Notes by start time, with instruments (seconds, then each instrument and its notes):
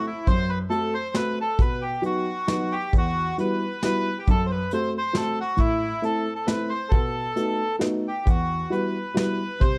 0.07 bandoneon E4
0.27 upright piano F#2, bandoneon C5, kick, closed hi-hat
0.49 bandoneon B4
0.70 upright piano A3 C4 F#4 A4, bandoneon A4, closed hi-hat
0.94 bandoneon C5
1.14 upright piano A3 C4 F#4 A4, bandoneon B4, snare, closed hi-hat
1.41 bandoneon A4
1.58 upright piano B2, bandoneon B4, kick, closed hi-hat
1.82 bandoneon G4
2.02 upright piano F#3 B3 D#4 F#4, bandoneon F#4, closed hi-hat
2.47 upright piano F#3 B3 D#4 F#4, snare, closed hi-hat
2.72 bandoneon G4
2.93 upright piano E2, kick, closed hi-hat
2.97 bandoneon F#4
3.38 upright piano G3 B3 E4 F#4, bandoneon B4, closed hi-hat
3.83 upright piano G3 B3 E4 F#4, bandoneon B4, snare, closed hi-hat
4.19 bandoneon G4
4.27 upright piano F#2, bandoneon A4, kick, closed hi-hat
4.46 bandoneon C5
4.51 bandoneon B4
4.71 upright piano A3 C4 F#4 A4, bandoneon C5, closed hi-hat
4.98 bandoneon C5
5.13 upright piano A3 C4 F#4 A4, bandoneon A4, snare, closed hi-hat
5.40 bandoneon F#4
5.57 upright piano A2, bandoneon E4, kick, closed hi-hat
6.02 upright piano A3 C4 E4 A4, bandoneon A4, closed hi-hat
6.35 bandoneon A4
6.46 upright piano A3 C4 E4 A4, bandoneon B4, snare, closed hi-hat
6.69 bandoneon C5
6.89 upright piano B2, bandoneon A4, kick, closed hi-hat
7.35 upright piano A3 B3 D#4 F#4, closed hi-hat
7.79 upright piano A3 B3 D#4 F#4, snare, closed hi-hat
8.08 bandoneon G4
8.25 upright piano E2, bandoneon F#4, kick, closed hi-hat
8.70 upright piano G3 B3 E4 F#4, bandoneon B4, closed hi-hat
9.14 upright piano G3 B3 E4 F#4, bandoneon B4, snare, closed hi-hat
9.60 upright piano C3, bandoneon C5, kick, closed hi-hat